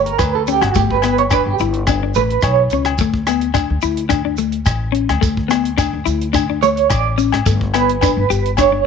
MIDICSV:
0, 0, Header, 1, 6, 480
1, 0, Start_track
1, 0, Tempo, 559180
1, 645, Time_signature, 4, 2, 24, 8
1, 7611, End_track
2, 0, Start_track
2, 0, Title_t, "Clean electric guitar"
2, 0, Program_c, 0, 27
2, 50, Note_on_c, 0, 70, 83
2, 160, Note_off_c, 0, 70, 0
2, 165, Note_on_c, 0, 71, 88
2, 288, Note_off_c, 0, 71, 0
2, 301, Note_on_c, 0, 69, 76
2, 406, Note_off_c, 0, 69, 0
2, 416, Note_on_c, 0, 67, 102
2, 535, Note_off_c, 0, 67, 0
2, 535, Note_on_c, 0, 66, 82
2, 643, Note_off_c, 0, 66, 0
2, 654, Note_on_c, 0, 67, 80
2, 774, Note_off_c, 0, 67, 0
2, 785, Note_on_c, 0, 71, 82
2, 885, Note_off_c, 0, 71, 0
2, 895, Note_on_c, 0, 71, 95
2, 1014, Note_off_c, 0, 71, 0
2, 1019, Note_on_c, 0, 73, 95
2, 1126, Note_off_c, 0, 73, 0
2, 1130, Note_on_c, 0, 71, 88
2, 1252, Note_off_c, 0, 71, 0
2, 1259, Note_on_c, 0, 67, 84
2, 1325, Note_off_c, 0, 67, 0
2, 1856, Note_on_c, 0, 71, 79
2, 2085, Note_off_c, 0, 71, 0
2, 2092, Note_on_c, 0, 73, 78
2, 2323, Note_off_c, 0, 73, 0
2, 5688, Note_on_c, 0, 73, 96
2, 5921, Note_off_c, 0, 73, 0
2, 5925, Note_on_c, 0, 74, 77
2, 6070, Note_off_c, 0, 74, 0
2, 6648, Note_on_c, 0, 71, 91
2, 7332, Note_off_c, 0, 71, 0
2, 7363, Note_on_c, 0, 73, 90
2, 7611, Note_off_c, 0, 73, 0
2, 7611, End_track
3, 0, Start_track
3, 0, Title_t, "Clean electric guitar"
3, 0, Program_c, 1, 27
3, 0, Note_on_c, 1, 57, 69
3, 99, Note_off_c, 1, 57, 0
3, 413, Note_on_c, 1, 61, 74
3, 586, Note_off_c, 1, 61, 0
3, 650, Note_on_c, 1, 57, 100
3, 825, Note_off_c, 1, 57, 0
3, 893, Note_on_c, 1, 59, 69
3, 1067, Note_off_c, 1, 59, 0
3, 1138, Note_on_c, 1, 62, 81
3, 1310, Note_off_c, 1, 62, 0
3, 1379, Note_on_c, 1, 64, 81
3, 1551, Note_off_c, 1, 64, 0
3, 1622, Note_on_c, 1, 62, 82
3, 1710, Note_off_c, 1, 62, 0
3, 1743, Note_on_c, 1, 62, 71
3, 1822, Note_off_c, 1, 62, 0
3, 1863, Note_on_c, 1, 57, 68
3, 2034, Note_off_c, 1, 57, 0
3, 2343, Note_on_c, 1, 61, 76
3, 2514, Note_off_c, 1, 61, 0
3, 2583, Note_on_c, 1, 57, 97
3, 2754, Note_off_c, 1, 57, 0
3, 2820, Note_on_c, 1, 59, 66
3, 2992, Note_off_c, 1, 59, 0
3, 3038, Note_on_c, 1, 62, 78
3, 3218, Note_off_c, 1, 62, 0
3, 3285, Note_on_c, 1, 64, 79
3, 3463, Note_off_c, 1, 64, 0
3, 3511, Note_on_c, 1, 62, 87
3, 3611, Note_off_c, 1, 62, 0
3, 3648, Note_on_c, 1, 62, 75
3, 3733, Note_off_c, 1, 62, 0
3, 3762, Note_on_c, 1, 57, 67
3, 3941, Note_off_c, 1, 57, 0
3, 4225, Note_on_c, 1, 61, 73
3, 4410, Note_off_c, 1, 61, 0
3, 4475, Note_on_c, 1, 57, 91
3, 4656, Note_off_c, 1, 57, 0
3, 4707, Note_on_c, 1, 59, 68
3, 4891, Note_off_c, 1, 59, 0
3, 4957, Note_on_c, 1, 62, 89
3, 5138, Note_off_c, 1, 62, 0
3, 5198, Note_on_c, 1, 64, 87
3, 5378, Note_off_c, 1, 64, 0
3, 5435, Note_on_c, 1, 62, 84
3, 5534, Note_off_c, 1, 62, 0
3, 5577, Note_on_c, 1, 62, 65
3, 5659, Note_off_c, 1, 62, 0
3, 5691, Note_on_c, 1, 57, 72
3, 5866, Note_off_c, 1, 57, 0
3, 6161, Note_on_c, 1, 61, 69
3, 6340, Note_off_c, 1, 61, 0
3, 6407, Note_on_c, 1, 57, 97
3, 6583, Note_off_c, 1, 57, 0
3, 6652, Note_on_c, 1, 59, 75
3, 6826, Note_off_c, 1, 59, 0
3, 6888, Note_on_c, 1, 62, 76
3, 7063, Note_off_c, 1, 62, 0
3, 7126, Note_on_c, 1, 67, 88
3, 7302, Note_off_c, 1, 67, 0
3, 7370, Note_on_c, 1, 62, 81
3, 7462, Note_off_c, 1, 62, 0
3, 7488, Note_on_c, 1, 62, 73
3, 7572, Note_off_c, 1, 62, 0
3, 7611, End_track
4, 0, Start_track
4, 0, Title_t, "Upright bass"
4, 0, Program_c, 2, 32
4, 0, Note_on_c, 2, 31, 96
4, 121, Note_off_c, 2, 31, 0
4, 166, Note_on_c, 2, 38, 90
4, 501, Note_off_c, 2, 38, 0
4, 527, Note_on_c, 2, 31, 83
4, 632, Note_off_c, 2, 31, 0
4, 650, Note_on_c, 2, 31, 91
4, 1222, Note_off_c, 2, 31, 0
4, 1254, Note_on_c, 2, 31, 77
4, 1356, Note_off_c, 2, 31, 0
4, 1372, Note_on_c, 2, 31, 86
4, 1816, Note_off_c, 2, 31, 0
4, 1848, Note_on_c, 2, 33, 77
4, 2064, Note_off_c, 2, 33, 0
4, 2089, Note_on_c, 2, 35, 86
4, 2305, Note_off_c, 2, 35, 0
4, 2331, Note_on_c, 2, 37, 78
4, 2546, Note_off_c, 2, 37, 0
4, 2565, Note_on_c, 2, 38, 86
4, 3140, Note_off_c, 2, 38, 0
4, 3177, Note_on_c, 2, 38, 82
4, 3279, Note_off_c, 2, 38, 0
4, 3290, Note_on_c, 2, 38, 93
4, 3976, Note_off_c, 2, 38, 0
4, 4001, Note_on_c, 2, 33, 82
4, 4340, Note_off_c, 2, 33, 0
4, 4376, Note_on_c, 2, 38, 84
4, 4479, Note_off_c, 2, 38, 0
4, 4485, Note_on_c, 2, 38, 81
4, 5060, Note_off_c, 2, 38, 0
4, 5091, Note_on_c, 2, 38, 78
4, 5196, Note_off_c, 2, 38, 0
4, 5206, Note_on_c, 2, 38, 90
4, 5893, Note_off_c, 2, 38, 0
4, 5930, Note_on_c, 2, 33, 97
4, 6264, Note_off_c, 2, 33, 0
4, 6292, Note_on_c, 2, 32, 89
4, 6396, Note_off_c, 2, 32, 0
4, 6405, Note_on_c, 2, 31, 90
4, 6979, Note_off_c, 2, 31, 0
4, 7012, Note_on_c, 2, 31, 89
4, 7115, Note_off_c, 2, 31, 0
4, 7125, Note_on_c, 2, 31, 91
4, 7611, Note_off_c, 2, 31, 0
4, 7611, End_track
5, 0, Start_track
5, 0, Title_t, "Shekere"
5, 167, Note_on_c, 9, 82, 81
5, 253, Note_off_c, 9, 82, 0
5, 405, Note_on_c, 9, 82, 71
5, 491, Note_off_c, 9, 82, 0
5, 639, Note_on_c, 9, 82, 94
5, 725, Note_off_c, 9, 82, 0
5, 883, Note_on_c, 9, 82, 68
5, 969, Note_off_c, 9, 82, 0
5, 1120, Note_on_c, 9, 82, 85
5, 1206, Note_off_c, 9, 82, 0
5, 1364, Note_on_c, 9, 82, 68
5, 1450, Note_off_c, 9, 82, 0
5, 1608, Note_on_c, 9, 82, 90
5, 1694, Note_off_c, 9, 82, 0
5, 1841, Note_on_c, 9, 82, 71
5, 1927, Note_off_c, 9, 82, 0
5, 2077, Note_on_c, 9, 82, 79
5, 2163, Note_off_c, 9, 82, 0
5, 2322, Note_on_c, 9, 82, 66
5, 2407, Note_off_c, 9, 82, 0
5, 2559, Note_on_c, 9, 82, 83
5, 2645, Note_off_c, 9, 82, 0
5, 2807, Note_on_c, 9, 82, 65
5, 2892, Note_off_c, 9, 82, 0
5, 3042, Note_on_c, 9, 82, 81
5, 3128, Note_off_c, 9, 82, 0
5, 3277, Note_on_c, 9, 82, 75
5, 3363, Note_off_c, 9, 82, 0
5, 3521, Note_on_c, 9, 82, 99
5, 3606, Note_off_c, 9, 82, 0
5, 3751, Note_on_c, 9, 82, 78
5, 3837, Note_off_c, 9, 82, 0
5, 3997, Note_on_c, 9, 82, 80
5, 4082, Note_off_c, 9, 82, 0
5, 4488, Note_on_c, 9, 82, 104
5, 4574, Note_off_c, 9, 82, 0
5, 4724, Note_on_c, 9, 82, 73
5, 4810, Note_off_c, 9, 82, 0
5, 4966, Note_on_c, 9, 82, 97
5, 5052, Note_off_c, 9, 82, 0
5, 5203, Note_on_c, 9, 82, 79
5, 5289, Note_off_c, 9, 82, 0
5, 5442, Note_on_c, 9, 82, 97
5, 5528, Note_off_c, 9, 82, 0
5, 5688, Note_on_c, 9, 82, 82
5, 5774, Note_off_c, 9, 82, 0
5, 5926, Note_on_c, 9, 82, 94
5, 6012, Note_off_c, 9, 82, 0
5, 6167, Note_on_c, 9, 82, 76
5, 6253, Note_off_c, 9, 82, 0
5, 6405, Note_on_c, 9, 82, 105
5, 6490, Note_off_c, 9, 82, 0
5, 6652, Note_on_c, 9, 82, 76
5, 6738, Note_off_c, 9, 82, 0
5, 6892, Note_on_c, 9, 82, 107
5, 6978, Note_off_c, 9, 82, 0
5, 7129, Note_on_c, 9, 82, 80
5, 7214, Note_off_c, 9, 82, 0
5, 7364, Note_on_c, 9, 82, 104
5, 7450, Note_off_c, 9, 82, 0
5, 7611, End_track
6, 0, Start_track
6, 0, Title_t, "Drums"
6, 53, Note_on_c, 9, 42, 53
6, 139, Note_off_c, 9, 42, 0
6, 159, Note_on_c, 9, 68, 60
6, 164, Note_on_c, 9, 37, 65
6, 164, Note_on_c, 9, 42, 55
6, 165, Note_on_c, 9, 36, 68
6, 245, Note_off_c, 9, 68, 0
6, 249, Note_off_c, 9, 37, 0
6, 249, Note_off_c, 9, 42, 0
6, 251, Note_off_c, 9, 36, 0
6, 404, Note_on_c, 9, 42, 51
6, 490, Note_off_c, 9, 42, 0
6, 527, Note_on_c, 9, 68, 69
6, 536, Note_on_c, 9, 37, 67
6, 536, Note_on_c, 9, 42, 55
6, 613, Note_off_c, 9, 68, 0
6, 622, Note_off_c, 9, 37, 0
6, 622, Note_off_c, 9, 42, 0
6, 646, Note_on_c, 9, 42, 51
6, 650, Note_on_c, 9, 36, 84
6, 732, Note_off_c, 9, 42, 0
6, 735, Note_off_c, 9, 36, 0
6, 777, Note_on_c, 9, 36, 53
6, 863, Note_off_c, 9, 36, 0
6, 876, Note_on_c, 9, 68, 64
6, 889, Note_on_c, 9, 37, 65
6, 889, Note_on_c, 9, 42, 48
6, 962, Note_off_c, 9, 68, 0
6, 975, Note_off_c, 9, 37, 0
6, 975, Note_off_c, 9, 42, 0
6, 1015, Note_on_c, 9, 42, 46
6, 1101, Note_off_c, 9, 42, 0
6, 1121, Note_on_c, 9, 68, 65
6, 1125, Note_on_c, 9, 37, 66
6, 1125, Note_on_c, 9, 42, 47
6, 1128, Note_on_c, 9, 36, 58
6, 1207, Note_off_c, 9, 68, 0
6, 1210, Note_off_c, 9, 37, 0
6, 1210, Note_off_c, 9, 42, 0
6, 1214, Note_off_c, 9, 36, 0
6, 1375, Note_on_c, 9, 42, 47
6, 1460, Note_off_c, 9, 42, 0
6, 1491, Note_on_c, 9, 42, 47
6, 1577, Note_off_c, 9, 42, 0
6, 1604, Note_on_c, 9, 37, 65
6, 1604, Note_on_c, 9, 42, 46
6, 1607, Note_on_c, 9, 68, 67
6, 1609, Note_on_c, 9, 36, 92
6, 1690, Note_off_c, 9, 37, 0
6, 1690, Note_off_c, 9, 42, 0
6, 1693, Note_off_c, 9, 68, 0
6, 1695, Note_off_c, 9, 36, 0
6, 1847, Note_on_c, 9, 42, 50
6, 1933, Note_off_c, 9, 42, 0
6, 1978, Note_on_c, 9, 42, 44
6, 2064, Note_off_c, 9, 42, 0
6, 2081, Note_on_c, 9, 37, 75
6, 2081, Note_on_c, 9, 42, 49
6, 2087, Note_on_c, 9, 36, 72
6, 2091, Note_on_c, 9, 68, 60
6, 2167, Note_off_c, 9, 37, 0
6, 2167, Note_off_c, 9, 42, 0
6, 2173, Note_off_c, 9, 36, 0
6, 2177, Note_off_c, 9, 68, 0
6, 2318, Note_on_c, 9, 42, 49
6, 2404, Note_off_c, 9, 42, 0
6, 2446, Note_on_c, 9, 37, 61
6, 2446, Note_on_c, 9, 42, 51
6, 2453, Note_on_c, 9, 68, 71
6, 2532, Note_off_c, 9, 37, 0
6, 2532, Note_off_c, 9, 42, 0
6, 2539, Note_off_c, 9, 68, 0
6, 2562, Note_on_c, 9, 42, 44
6, 2565, Note_on_c, 9, 36, 84
6, 2648, Note_off_c, 9, 42, 0
6, 2650, Note_off_c, 9, 36, 0
6, 2692, Note_on_c, 9, 36, 55
6, 2778, Note_off_c, 9, 36, 0
6, 2805, Note_on_c, 9, 37, 65
6, 2805, Note_on_c, 9, 42, 49
6, 2808, Note_on_c, 9, 68, 67
6, 2891, Note_off_c, 9, 37, 0
6, 2891, Note_off_c, 9, 42, 0
6, 2894, Note_off_c, 9, 68, 0
6, 2931, Note_on_c, 9, 42, 51
6, 3017, Note_off_c, 9, 42, 0
6, 3039, Note_on_c, 9, 68, 67
6, 3044, Note_on_c, 9, 36, 67
6, 3044, Note_on_c, 9, 37, 62
6, 3044, Note_on_c, 9, 42, 50
6, 3125, Note_off_c, 9, 68, 0
6, 3130, Note_off_c, 9, 36, 0
6, 3130, Note_off_c, 9, 37, 0
6, 3130, Note_off_c, 9, 42, 0
6, 3280, Note_on_c, 9, 42, 44
6, 3366, Note_off_c, 9, 42, 0
6, 3410, Note_on_c, 9, 42, 51
6, 3496, Note_off_c, 9, 42, 0
6, 3514, Note_on_c, 9, 68, 62
6, 3519, Note_on_c, 9, 37, 66
6, 3519, Note_on_c, 9, 42, 51
6, 3523, Note_on_c, 9, 36, 77
6, 3600, Note_off_c, 9, 68, 0
6, 3605, Note_off_c, 9, 37, 0
6, 3605, Note_off_c, 9, 42, 0
6, 3609, Note_off_c, 9, 36, 0
6, 3763, Note_on_c, 9, 42, 54
6, 3849, Note_off_c, 9, 42, 0
6, 3882, Note_on_c, 9, 42, 50
6, 3968, Note_off_c, 9, 42, 0
6, 3997, Note_on_c, 9, 68, 54
6, 4004, Note_on_c, 9, 36, 69
6, 4004, Note_on_c, 9, 37, 73
6, 4004, Note_on_c, 9, 42, 59
6, 4083, Note_off_c, 9, 68, 0
6, 4090, Note_off_c, 9, 36, 0
6, 4090, Note_off_c, 9, 37, 0
6, 4090, Note_off_c, 9, 42, 0
6, 4247, Note_on_c, 9, 42, 54
6, 4332, Note_off_c, 9, 42, 0
6, 4372, Note_on_c, 9, 37, 62
6, 4372, Note_on_c, 9, 42, 55
6, 4373, Note_on_c, 9, 68, 72
6, 4458, Note_off_c, 9, 37, 0
6, 4458, Note_off_c, 9, 42, 0
6, 4459, Note_off_c, 9, 68, 0
6, 4487, Note_on_c, 9, 36, 85
6, 4492, Note_on_c, 9, 42, 53
6, 4572, Note_off_c, 9, 36, 0
6, 4578, Note_off_c, 9, 42, 0
6, 4612, Note_on_c, 9, 36, 56
6, 4698, Note_off_c, 9, 36, 0
6, 4726, Note_on_c, 9, 68, 67
6, 4729, Note_on_c, 9, 37, 73
6, 4729, Note_on_c, 9, 42, 50
6, 4812, Note_off_c, 9, 68, 0
6, 4815, Note_off_c, 9, 37, 0
6, 4815, Note_off_c, 9, 42, 0
6, 4853, Note_on_c, 9, 42, 51
6, 4939, Note_off_c, 9, 42, 0
6, 4962, Note_on_c, 9, 37, 61
6, 4962, Note_on_c, 9, 42, 50
6, 4964, Note_on_c, 9, 36, 69
6, 4969, Note_on_c, 9, 68, 68
6, 5048, Note_off_c, 9, 37, 0
6, 5048, Note_off_c, 9, 42, 0
6, 5050, Note_off_c, 9, 36, 0
6, 5055, Note_off_c, 9, 68, 0
6, 5209, Note_on_c, 9, 42, 50
6, 5295, Note_off_c, 9, 42, 0
6, 5335, Note_on_c, 9, 42, 52
6, 5421, Note_off_c, 9, 42, 0
6, 5446, Note_on_c, 9, 36, 86
6, 5446, Note_on_c, 9, 37, 71
6, 5446, Note_on_c, 9, 42, 51
6, 5454, Note_on_c, 9, 68, 63
6, 5531, Note_off_c, 9, 36, 0
6, 5532, Note_off_c, 9, 37, 0
6, 5532, Note_off_c, 9, 42, 0
6, 5540, Note_off_c, 9, 68, 0
6, 5690, Note_on_c, 9, 42, 48
6, 5776, Note_off_c, 9, 42, 0
6, 5814, Note_on_c, 9, 42, 50
6, 5900, Note_off_c, 9, 42, 0
6, 5920, Note_on_c, 9, 68, 61
6, 5926, Note_on_c, 9, 36, 74
6, 5927, Note_on_c, 9, 37, 69
6, 5927, Note_on_c, 9, 42, 56
6, 6006, Note_off_c, 9, 68, 0
6, 6012, Note_off_c, 9, 36, 0
6, 6013, Note_off_c, 9, 37, 0
6, 6013, Note_off_c, 9, 42, 0
6, 6169, Note_on_c, 9, 42, 44
6, 6254, Note_off_c, 9, 42, 0
6, 6287, Note_on_c, 9, 68, 73
6, 6299, Note_on_c, 9, 37, 68
6, 6299, Note_on_c, 9, 42, 50
6, 6373, Note_off_c, 9, 68, 0
6, 6385, Note_off_c, 9, 37, 0
6, 6385, Note_off_c, 9, 42, 0
6, 6406, Note_on_c, 9, 36, 89
6, 6406, Note_on_c, 9, 42, 49
6, 6492, Note_off_c, 9, 36, 0
6, 6492, Note_off_c, 9, 42, 0
6, 6533, Note_on_c, 9, 36, 58
6, 6619, Note_off_c, 9, 36, 0
6, 6641, Note_on_c, 9, 68, 77
6, 6646, Note_on_c, 9, 37, 66
6, 6646, Note_on_c, 9, 42, 51
6, 6727, Note_off_c, 9, 68, 0
6, 6732, Note_off_c, 9, 37, 0
6, 6732, Note_off_c, 9, 42, 0
6, 6777, Note_on_c, 9, 42, 53
6, 6863, Note_off_c, 9, 42, 0
6, 6878, Note_on_c, 9, 68, 68
6, 6889, Note_on_c, 9, 36, 64
6, 6896, Note_on_c, 9, 37, 64
6, 6896, Note_on_c, 9, 42, 48
6, 6964, Note_off_c, 9, 68, 0
6, 6975, Note_off_c, 9, 36, 0
6, 6982, Note_off_c, 9, 37, 0
6, 6982, Note_off_c, 9, 42, 0
6, 7136, Note_on_c, 9, 42, 46
6, 7221, Note_off_c, 9, 42, 0
6, 7259, Note_on_c, 9, 42, 50
6, 7345, Note_off_c, 9, 42, 0
6, 7357, Note_on_c, 9, 68, 63
6, 7368, Note_on_c, 9, 36, 88
6, 7370, Note_on_c, 9, 37, 70
6, 7370, Note_on_c, 9, 42, 53
6, 7443, Note_off_c, 9, 68, 0
6, 7453, Note_off_c, 9, 36, 0
6, 7456, Note_off_c, 9, 37, 0
6, 7456, Note_off_c, 9, 42, 0
6, 7611, End_track
0, 0, End_of_file